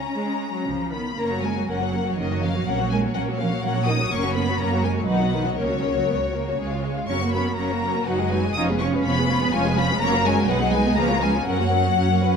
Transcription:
Already playing: C#4 A#5
0.14 G#3
0.54 F#3
0.66 C#2 C#3 F3
0.92 D#3 B3 B5
1.17 F#1 A#3 C#4 A#4 A#5
1.30 F#3 A#3 F#4 C#5
1.42 G#3 A#3 C#4 A#4 G#5
1.55 F#3 A#3 F#4 C#5
1.68 F#1 F#3 A#3 C#4 A#4 F#5
1.81 F#3 A#3 F#4 C#5
1.94 A#3 C#4 A#4
2.06 F#3 A#3 F#4 C#5
2.17 F#1 D#3 A#3 C#4 A#4 D#5
2.31 F#3 A#3 F#4 C#5
2.42 F3 A#3 C#4 A#4 F5
2.56 F#3 A#3 F#4 C#5
2.67 A#1 F#3 A#3 C#4 A#4 F#5
2.79 F#3 A#3 F#4 C#5
2.91 G#3 A#3 C#4 A#4 G#5
3.04 F#3 A#3 F#4 C#5
3.15 A#1 F#3 A#3 C#4 A#4 F#5
3.28 F#3 A#3 F#4 C#5
3.39 F3 A#3 C#4 A#4 F5
3.51 F#3 A#3 F#4 C#5
3.62 A#1 F#3 A#3 C#4 A#4 F#5
3.75 F#3 A#3 F#4 C#5
3.87 A#3 C#4 D#4 A#4 D#6
4.00 F#3 A#3 F#4 C#5
4.12 F#1 A#3 C#4 A#4 C#6
4.23 F#3 A#3 F#4 C#5
4.35 A#3 B3 C#4 A#4 B5
4.48 F#3 A#3 F#4 C#5
4.59 F#1 A#3 C#4 A#4 A#5
4.71 F#3 A#3 F#4 C#5
4.82 G#3 A#3 C#4 A#4 G#5
4.94 F#3 A#3 F#4 C#5
5.06 B1 D#3 F#3 D#4 B4 F#5
5.19 F#3 B3 F#4 D#5
5.32 D#3 D#4 B4
5.45 F#3 B3 F#4 D#5
5.57 C#2 C#3 A#3 C#4 A#4 C#5
5.70 F#3 A#3 F#4 C#5
5.83 A#3 C#4 A#4
5.95 F#3 A#3 F#4 C#5
6.07 C#2 B3 A#4
6.20 F#4 C#5
6.34 A#3 A#4
6.48 F#4 C#5
6.59 C#2 G#3 G#4 C#5
6.72 F4 F5
6.84 G#4 C#5
6.97 F4 F5
7.08 F#1 F#3 C#4 A#4 C#5 C#6
7.22 A#3 F#4 A#4
7.33 F#3 B3 C#4 A#4 C#5 B5
7.46 A#3 F#4 A#4
7.56 F#1 F#3 A#3 C#4 A#4 C#5 A#5
7.71 A#3 F#4 A#4
7.84 F#3 C#4 A#4 C#5
7.95 A#3 F#4 A#4
8.06 F#1 F#3 D#4 F#4 B4 F#5
8.19 G#3 F#4 G#4 D#5
8.29 F#3 G#3 D#4 F#4 B4 G#5
8.45 G#3 F#4 G#4 D#5
8.54 F1 F3 C#4 D#4 F4 C#5 D#6
8.69 G#3 B3 G#4 B4
8.80 F3 C#4 F4 C#5 C#6
8.93 G#3 B3 G#4 B4
9.05 F1 F3 B3 C#4 F4 C#5 B5
9.19 G#3 B3 G#4 B4
9.29 F3 C#4 F4 C#5
9.43 G#3 B3 G#4 B4
9.53 F1 F3 G#3 C#4 F4 C#5 G#5
9.67 G#3 B3 G#4 B4
9.78 F3 B3 C#4 F4 C#5 B5
9.91 G#3 B3 G#4 B4
10.02 F#1 F#3 A#3 C#4 A#4 C#5 A#5
10.15 A#3 F#4 A#4
10.25 F#3 G#3 C#4 A#4 C#5 G#5
10.37 A#3 F#4 A#4
10.48 B1 F#3 G#3 D#4 B4 F#5
10.61 B3 G#4 D#5
10.72 G#3 D#4 B4 G#5
10.85 B3 G#4 D#5
10.96 C#2 F3 A#3 C#4 G#4 B4 A#5
11.10 G#3 B3 F4 C#5
11.22 F3 G#3 C#4 G#4 B4 G#5
11.34 G#3 B3 F4 C#5
11.47 F#2 F#3 C#4 A#4 F#5
11.60 A#3 F#4 C#5
11.71 F#3 C#4 A#4
11.86 A#3 F#4 C#5
11.98 F#2 F#3 C#4 C#5
12.10 A#3
12.23 F#3 C#4 B4

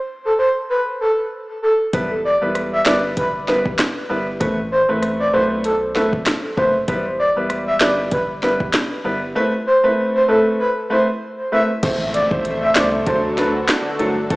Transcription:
0.25 A4
0.39 C5
0.70 B4
1.01 A4
1.62 A4
1.93 E1 G3 B3 E4 B4, kick, closed hi-hat
2.25 D5
2.41 E1 G3 B3 E4 B4
2.55 cross-stick, closed hi-hat
2.73 E5
2.86 G1 G3 B3 E4 B4 D5, snare, clap
3.17 B4, kick, closed hi-hat
3.48 G3 B3 E4 B4, snare
3.66 kick
3.79 cross-stick, snare, clap, closed hi-hat
4.09 G1 G3 B3 E4 B4
4.40 A1 A3 C4 E4 B4, kick, closed hi-hat
4.72 C5
4.89 A1 A3 C4 E4 B4
5.02 cross-stick, closed hi-hat
5.20 D5
5.33 B1 A3 C4 E4 B4 C5
5.64 A4, closed hi-hat
5.95 A3 C4 E4 A4 B4, snare
6.13 kick
6.26 cross-stick, snare, clap, closed hi-hat
6.57 F#1 A3 C4 E4 B4 C5, kick
6.88 E1 G3 B3 E4 B4, kick, closed hi-hat
7.19 D5
7.36 E1 G3 B3 E4 B4
7.50 cross-stick, closed hi-hat
7.67 E5
7.80 G1 G3 B3 E4 B4 D5, snare, clap
8.11 B4, kick, closed hi-hat
8.42 G3 B3 E4 B4, snare
8.60 kick
8.73 cross-stick, snare, clap, closed hi-hat
9.04 G1 G3 B3 E4 B4
9.35 A3 C4 E4 B4
9.67 C5
9.83 A3 C4 E4 B4
10.15 C5
10.28 A3 C4 E4 A4 B4
10.60 B4
10.90 A3 C4 E4 B4 C5
11.52 A3 C4 E4 B4 E5
11.83 A1 A3 C4 E4 A4 C5 E5, kick, closed hi-hat, crash, impact
12.14 D5, closed hi-hat
12.31 A1 A3 C4 E4 C5, kick
12.45 closed hi-hat
12.62 E5
12.75 C2 A3 C4 E4 C5 D5, snare, clap, closed hi-hat
13.06 D2 D3 F#3 A3 D4 F#4 A4 C5, kick, closed hi-hat
13.37 F#3 A3 D4 A4 B4, snare, closed hi-hat
13.69 cross-stick, snare, clap, closed hi-hat
13.99 G1 F#3 A3 D4 A4, closed hi-hat
14.30 A1 E3 A3 C4 A4 C5 E5, kick, closed hi-hat

